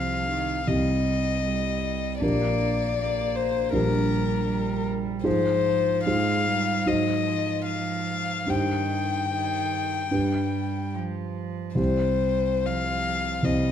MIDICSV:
0, 0, Header, 1, 4, 480
1, 0, Start_track
1, 0, Key_signature, -3, "minor"
1, 0, Tempo, 789474
1, 895, Tempo, 756620
1, 1373, Time_signature, 4, 2, 24, 8
1, 3295, Tempo, 811908
1, 6175, Tempo, 826446
1, 7135, Tempo, 864553
1, 7615, Tempo, 797872
1, 8261, End_track
2, 0, Start_track
2, 0, Title_t, "Violin"
2, 0, Program_c, 0, 40
2, 0, Note_on_c, 0, 77, 51
2, 408, Note_on_c, 0, 75, 47
2, 417, Note_off_c, 0, 77, 0
2, 1357, Note_off_c, 0, 75, 0
2, 1360, Note_on_c, 0, 74, 57
2, 2087, Note_on_c, 0, 72, 54
2, 2097, Note_off_c, 0, 74, 0
2, 2329, Note_off_c, 0, 72, 0
2, 2331, Note_on_c, 0, 70, 60
2, 3033, Note_off_c, 0, 70, 0
2, 3285, Note_on_c, 0, 72, 62
2, 3755, Note_off_c, 0, 72, 0
2, 3764, Note_on_c, 0, 77, 67
2, 4248, Note_on_c, 0, 75, 56
2, 4257, Note_off_c, 0, 77, 0
2, 4709, Note_off_c, 0, 75, 0
2, 4712, Note_on_c, 0, 77, 57
2, 5211, Note_on_c, 0, 79, 51
2, 5220, Note_off_c, 0, 77, 0
2, 6653, Note_off_c, 0, 79, 0
2, 7124, Note_on_c, 0, 72, 49
2, 7622, Note_on_c, 0, 77, 55
2, 7631, Note_off_c, 0, 72, 0
2, 8098, Note_on_c, 0, 75, 46
2, 8107, Note_off_c, 0, 77, 0
2, 8261, Note_off_c, 0, 75, 0
2, 8261, End_track
3, 0, Start_track
3, 0, Title_t, "Grand piano"
3, 0, Program_c, 1, 0
3, 0, Control_c, 1, 64, 127
3, 0, Note_on_c, 1, 36, 31
3, 0, Note_on_c, 1, 60, 24
3, 0, Note_on_c, 1, 67, 25
3, 386, Note_off_c, 1, 36, 0
3, 388, Note_off_c, 1, 60, 0
3, 391, Note_off_c, 1, 67, 0
3, 411, Note_on_c, 1, 36, 33
3, 412, Note_on_c, 1, 60, 27
3, 416, Note_on_c, 1, 67, 27
3, 1344, Note_off_c, 1, 36, 0
3, 1345, Note_off_c, 1, 60, 0
3, 1347, Note_off_c, 1, 67, 0
3, 1363, Note_on_c, 1, 34, 36
3, 1367, Note_on_c, 1, 62, 30
3, 1370, Note_on_c, 1, 67, 29
3, 1375, Note_on_c, 1, 70, 30
3, 1385, Control_c, 1, 64, 0
3, 1482, Control_c, 1, 64, 127
3, 2303, Note_off_c, 1, 34, 0
3, 2306, Note_off_c, 1, 62, 0
3, 2307, Note_off_c, 1, 67, 0
3, 2309, Note_off_c, 1, 70, 0
3, 2324, Note_on_c, 1, 34, 40
3, 2324, Note_on_c, 1, 62, 34
3, 2331, Note_on_c, 1, 67, 34
3, 2331, Note_on_c, 1, 70, 33
3, 3263, Note_off_c, 1, 34, 0
3, 3263, Note_off_c, 1, 62, 0
3, 3266, Note_off_c, 1, 70, 0
3, 3267, Note_off_c, 1, 67, 0
3, 3282, Note_on_c, 1, 44, 43
3, 3284, Note_on_c, 1, 65, 34
3, 3289, Note_on_c, 1, 68, 36
3, 3291, Note_on_c, 1, 72, 33
3, 3305, Control_c, 1, 64, 0
3, 3400, Control_c, 1, 64, 127
3, 3762, Note_off_c, 1, 44, 0
3, 3764, Note_off_c, 1, 65, 0
3, 3766, Note_off_c, 1, 68, 0
3, 3767, Note_off_c, 1, 72, 0
3, 3772, Note_on_c, 1, 44, 38
3, 3777, Note_on_c, 1, 68, 34
3, 3779, Note_on_c, 1, 65, 32
3, 3782, Note_on_c, 1, 72, 33
3, 4234, Note_off_c, 1, 44, 0
3, 4237, Note_off_c, 1, 68, 0
3, 4238, Note_off_c, 1, 65, 0
3, 4240, Note_off_c, 1, 72, 0
3, 4243, Note_on_c, 1, 44, 38
3, 4245, Note_on_c, 1, 63, 31
3, 4246, Note_on_c, 1, 66, 30
3, 4253, Note_on_c, 1, 72, 30
3, 4266, Control_c, 1, 64, 0
3, 4358, Control_c, 1, 64, 127
3, 5178, Note_off_c, 1, 44, 0
3, 5179, Note_off_c, 1, 63, 0
3, 5180, Note_off_c, 1, 66, 0
3, 5184, Note_off_c, 1, 72, 0
3, 5193, Note_on_c, 1, 43, 32
3, 5195, Note_on_c, 1, 63, 28
3, 5200, Note_on_c, 1, 67, 26
3, 5206, Note_on_c, 1, 72, 27
3, 5220, Control_c, 1, 64, 0
3, 5320, Control_c, 1, 64, 127
3, 6144, Note_off_c, 1, 43, 0
3, 6145, Note_off_c, 1, 63, 0
3, 6147, Note_off_c, 1, 67, 0
3, 6150, Note_off_c, 1, 72, 0
3, 6165, Note_on_c, 1, 43, 29
3, 6167, Note_on_c, 1, 62, 25
3, 6170, Note_on_c, 1, 67, 24
3, 6170, Note_on_c, 1, 71, 25
3, 6186, Control_c, 1, 64, 0
3, 6274, Control_c, 1, 64, 127
3, 7107, Note_off_c, 1, 43, 0
3, 7108, Note_off_c, 1, 62, 0
3, 7110, Note_off_c, 1, 67, 0
3, 7110, Note_off_c, 1, 71, 0
3, 7119, Note_on_c, 1, 36, 34
3, 7120, Note_on_c, 1, 60, 27
3, 7126, Note_on_c, 1, 67, 27
3, 7128, Note_on_c, 1, 72, 29
3, 7146, Control_c, 1, 64, 0
3, 7234, Control_c, 1, 64, 127
3, 8065, Note_off_c, 1, 36, 0
3, 8066, Note_off_c, 1, 60, 0
3, 8069, Note_off_c, 1, 67, 0
3, 8070, Note_off_c, 1, 72, 0
3, 8086, Note_on_c, 1, 60, 28
3, 8087, Note_on_c, 1, 36, 35
3, 8091, Note_on_c, 1, 67, 28
3, 8094, Note_on_c, 1, 72, 27
3, 8261, Note_off_c, 1, 36, 0
3, 8261, Note_off_c, 1, 60, 0
3, 8261, Note_off_c, 1, 67, 0
3, 8261, Note_off_c, 1, 72, 0
3, 8261, End_track
4, 0, Start_track
4, 0, Title_t, "Cello"
4, 0, Program_c, 2, 42
4, 0, Note_on_c, 2, 53, 32
4, 159, Note_off_c, 2, 53, 0
4, 162, Note_on_c, 2, 51, 36
4, 401, Note_off_c, 2, 51, 0
4, 404, Note_on_c, 2, 55, 35
4, 878, Note_off_c, 2, 55, 0
4, 887, Note_on_c, 2, 55, 35
4, 1372, Note_on_c, 2, 58, 39
4, 1381, Note_off_c, 2, 55, 0
4, 1855, Note_off_c, 2, 58, 0
4, 1861, Note_on_c, 2, 58, 39
4, 2338, Note_on_c, 2, 55, 44
4, 2347, Note_off_c, 2, 58, 0
4, 2800, Note_off_c, 2, 55, 0
4, 2803, Note_on_c, 2, 55, 46
4, 3290, Note_on_c, 2, 53, 42
4, 3300, Note_off_c, 2, 55, 0
4, 3770, Note_on_c, 2, 56, 43
4, 3778, Note_off_c, 2, 53, 0
4, 4007, Note_on_c, 2, 55, 44
4, 4016, Note_off_c, 2, 56, 0
4, 4236, Note_on_c, 2, 54, 42
4, 4245, Note_off_c, 2, 55, 0
4, 4481, Note_on_c, 2, 53, 40
4, 4490, Note_off_c, 2, 54, 0
4, 5200, Note_off_c, 2, 53, 0
4, 5203, Note_on_c, 2, 51, 34
4, 5632, Note_off_c, 2, 51, 0
4, 5685, Note_on_c, 2, 51, 36
4, 6148, Note_off_c, 2, 51, 0
4, 6181, Note_on_c, 2, 55, 40
4, 6656, Note_on_c, 2, 53, 37
4, 6665, Note_off_c, 2, 55, 0
4, 7132, Note_off_c, 2, 53, 0
4, 7135, Note_on_c, 2, 55, 34
4, 7615, Note_on_c, 2, 53, 33
4, 7624, Note_off_c, 2, 55, 0
4, 8093, Note_off_c, 2, 53, 0
4, 8096, Note_on_c, 2, 55, 38
4, 8261, Note_off_c, 2, 55, 0
4, 8261, End_track
0, 0, End_of_file